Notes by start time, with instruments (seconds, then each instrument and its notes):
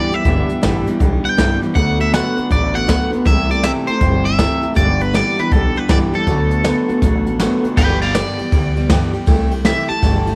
Already playing: steel-string acoustic guitar G2 D3 E3 G3 B3 G4, clean electric guitar D5
0.11 clean electric guitar G2 E5, steel-string acoustic guitar E3 G3 B3 G4, muted upright bass stroke, closed hi-hat
0.24 upright bass G1, steel-string acoustic guitar G2 D3 E3 G3 B3 G4, kick, closed hi-hat
0.49 steel-string acoustic guitar E3 G3 B3 G4, muted upright bass stroke, closed hi-hat
0.62 upright bass A1, steel-string acoustic guitar G2 D3 E3 G3 B3 G4, snare, closed hi-hat
0.86 clean electric guitar G2, steel-string acoustic guitar E3 G3 B3 G4, muted upright bass stroke, closed hi-hat
0.99 upright bass B1, clean electric guitar G2 D3, steel-string acoustic guitar E3 G3 B3 G4, kick, closed hi-hat
1.24 steel-string acoustic guitar E3 G3 B3 G4, clean electric guitar G5, muted upright bass stroke, closed hi-hat
1.37 upright bass C2, steel-string acoustic guitar G2 D3 E3 G3 B3 G4, snare, closed hi-hat
1.61 clean electric guitar G2, steel-string acoustic guitar E3 G3 B3 G4, closed hi-hat
1.74 upright bass D2, steel-string acoustic guitar D3 F#3 A3 B3 F#4, clean electric guitar F#5, kick, closed hi-hat
1.99 steel-string acoustic guitar A3 B3 F#4, clean electric guitar E5, closed hi-hat
2.12 steel-string acoustic guitar D3 F#3 A3 B3 F#4, clean electric guitar F#5, snare, closed hi-hat
2.36 clean electric guitar D3, steel-string acoustic guitar A3 B3 F#4, muted upright bass stroke, closed hi-hat
2.49 upright bass A1, clean electric guitar D3 D5, steel-string acoustic guitar F#3 A3 B3 F#4, kick, closed hi-hat
2.73 steel-string acoustic guitar A3 B3 F#4, clean electric guitar F#5, closed hi-hat
2.87 steel-string acoustic guitar D3 F#3 A3 B3 F#4, kick, snare, closed hi-hat
3.10 clean electric guitar D3, steel-string acoustic guitar A3 B3 F#4, muted upright bass stroke, closed hi-hat
3.25 upright bass C2, steel-string acoustic guitar C3 E3 A3 E4 G4, clean electric guitar G3 E5, kick, closed hi-hat
3.50 steel-string acoustic guitar A3 E4 G4, clean electric guitar D5, closed hi-hat
3.63 steel-string acoustic guitar C3 E3 A3 E4 G4, clean electric guitar E5, snare, closed hi-hat
3.87 clean electric guitar C3 C5, steel-string acoustic guitar A3 E4 G4, muted upright bass stroke, closed hi-hat
4.00 upright bass G1, clean electric guitar C3 G3, steel-string acoustic guitar E3 A3 E4 G4, kick, closed hi-hat
4.25 steel-string acoustic guitar A3 E4 G4, clean electric guitar E5, closed hi-hat
4.38 steel-string acoustic guitar C3 E3 A3 E4 G4, kick, snare, closed hi-hat
4.61 clean electric guitar C3, steel-string acoustic guitar A3 E4 G4, muted upright bass stroke, closed hi-hat
4.74 upright bass G1, steel-string acoustic guitar G2 D3 E3 G3 B3 G4, clean electric guitar D5, kick, closed hi-hat
4.99 steel-string acoustic guitar E3 G3 B3 G4, clean electric guitar B4, closed hi-hat
5.13 steel-string acoustic guitar G2 D3 E3 G3 B3 G4, clean electric guitar D5, snare, closed hi-hat
5.37 clean electric guitar G2 B4, steel-string acoustic guitar E3 G3 B3 G4, muted upright bass stroke, closed hi-hat
5.51 upright bass B1, clean electric guitar G2 D3 A4, steel-string acoustic guitar E3 G3 B3 G4, kick, closed hi-hat
5.75 steel-string acoustic guitar E3 G3 B3 G4, clean electric guitar B4, closed hi-hat
5.88 upright bass C2, steel-string acoustic guitar G2 D3 E3 G3 B3 G4, clean electric guitar D5, kick, snare, closed hi-hat
6.13 clean electric guitar G2 A4, steel-string acoustic guitar E3 G3 B3 G4, closed hi-hat
6.27 upright bass D2, steel-string acoustic guitar D3 F#3 A3 B3 F#4, kick, closed hi-hat
6.51 steel-string acoustic guitar A3 B3 F#4, closed hi-hat
6.64 steel-string acoustic guitar D3 F#3 A3 B3 F#4, snare, closed hi-hat
6.89 clean electric guitar D3, steel-string acoustic guitar A3 B3 F#4, muted upright bass stroke, closed hi-hat
7.02 upright bass A1, clean electric guitar D3, steel-string acoustic guitar F#3 A3 B3 F#4, kick, snare, closed hi-hat
7.26 steel-string acoustic guitar A3 B3 F#4, closed hi-hat
7.40 steel-string acoustic guitar D3 F#3 A3 B3 F#4, snare, closed hi-hat
7.63 clean electric guitar D3, steel-string acoustic guitar A3 B3 F#4, muted upright bass stroke, closed hi-hat
7.77 upright bass G1, steel-string acoustic guitar G2 D3 E3 G3 B3 G4, clean electric guitar B4 G5, kick, crash
8.00 steel-string acoustic guitar E3 G3 B3 G4, clean electric guitar D5 F5, ride
8.14 steel-string acoustic guitar G2 D3 E3 G3 B3 G4, clean electric guitar D5, snare, ride
8.38 steel-string acoustic guitar E3 G3 B3 G4, muted upright bass stroke, ride
8.51 upright bass D2, steel-string acoustic guitar E3 G3 B3 G4, kick, ride
8.76 steel-string acoustic guitar E3 G3 B3 G4, ride
8.89 steel-string acoustic guitar G2 D3 E3 G3 B3 G4, kick, snare, ride
9.13 steel-string acoustic guitar E3 G3 B3 G4, muted upright bass stroke, ride
9.26 upright bass C2, steel-string acoustic guitar C3 E3 A3 E4 G4, kick, ride
9.51 steel-string acoustic guitar A3 E4 G4, ride
9.65 steel-string acoustic guitar C3 E3 A3 E4 G4, clean electric guitar E5, snare, ride
9.89 steel-string acoustic guitar A3 E4 G4, clean electric guitar A5, muted upright bass stroke, ride
10.02 upright bass G1, steel-string acoustic guitar E3 A3 E4 G4, kick, snare, ride
10.26 steel-string acoustic guitar A3 E4 G4, ride